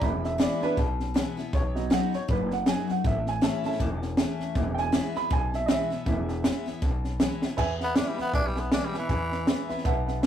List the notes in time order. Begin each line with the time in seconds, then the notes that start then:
0.01 E1 E2 G#3 B3 E4 B5, kick, snare
0.24 E5, snare
0.38 E3 G#3 B3 E4 D5, snare, hi-hat pedal
0.61 G#3 B3 D4 E4 B4, muted upright bass stroke, snare
0.77 B1 B2, kick, snare
1.00 snare
1.14 E3 G#3 B3 E4, snare, hi-hat pedal
1.37 B3 E4, muted upright bass stroke, snare
1.53 B1 B2 C#5, kick, snare
1.74 F#3 B3 D#4, snare
1.90 F#3 B3 D#4 F#4 F#5, snare, hi-hat pedal
2.13 D#4 F#4 C#5, muted upright bass stroke, snare
2.28 F#1 F#2 B4, kick, snare
2.51 F#5, snare
2.66 F#3 B3 D#4 F#4 G#5, snare, hi-hat pedal
2.87 D#4 F#4 F#5, muted upright bass stroke, snare
3.04 A1 A2 E5, kick, snare
3.26 G#5, snare
3.41 E3 A3 C#4 E4 A5, snare, hi-hat pedal
3.64 A3 C#4 E4 A5, muted upright bass stroke, snare
3.72 snare
3.80 E1 E2, kick, snare
4.02 snare
4.17 E3 A3 C#4 E4, snare, hi-hat pedal
4.40 muted upright bass stroke, snare
4.54 E1 E2 G#3 B3 E4, kick, snare
4.74 G5, snare
4.79 G#5
4.92 E3 G#3 B3 E4, snare, hi-hat pedal
5.14 B3 E4 B5, muted upright bass stroke, snare
5.30 B1 B2 G#5, kick, snare
5.53 E5, snare
5.66 E3 G#3 B3 E4 D#5, snare, hi-hat pedal
5.71 E5
5.90 B3 E4, muted upright bass stroke, snare
6.06 E1 E2 G#3 B3 E4, kick, snare
6.29 snare
6.44 E3 G#3 B3 E4, snare, hi-hat pedal
6.66 B3 E4, muted upright bass stroke, snare
6.82 B1 B2, kick, snare
7.04 snare
7.20 E3 G#3 B3 E4, snare, hi-hat pedal
7.42 B3 E4, muted upright bass stroke, snare
7.57 E2 B4 E5 G#5, kick, snare, crash
7.79 B4 E5 F#5, snare
7.84 B3
7.94 E3 G#3 B3 D4 E4 B4 E5 B5, snare, hi-hat pedal
8.08 G3
8.17 B3 E4 B4 E5 B5, muted upright bass stroke, snare
8.21 B3
8.32 B1 D4 B4 E5 G#5, kick, snare
8.47 G3
8.55 B4 E5 G#5, snare
8.60 B3
8.70 E3 G#3 B3 D4 E4 B4 E5 G#5, snare, hi-hat pedal
8.85 G3
8.92 B3 E4 B4 E5 G#5, snare
8.99 E3
9.08 E2 B4 E5 G#5, kick, snare
9.30 B4 E5 B5, snare
9.46 E3 G#3 B3 E4 B4 E5 B5, snare, hi-hat pedal
9.68 B3 E4 B4 E5 B5, muted upright bass stroke, snare
9.78 snare
9.84 B1 B2 B4 E5 F#5, kick, snare
10.06 B4 E5 F#5, snare
10.22 E3 B4 E5, snare, hi-hat pedal